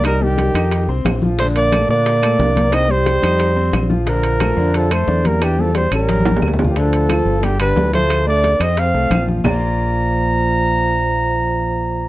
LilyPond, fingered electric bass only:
\new Staff \with { instrumentName = "Fingered electric bass" } { \clef bass \time 4/4 \key bes \major \tempo 4 = 179 c,4. f,4 c,8 bes,,4~ | bes,,4. bes,4. c,4~ | c,4. f,4. bes,,4~ | bes,,4. f,4. e,4~ |
e,4. a,,4. d,4~ | d,4. g,,4. d,4~ | d,4. f,4 c,8 bes,,4 | bes,,1~ |
bes,,1 | }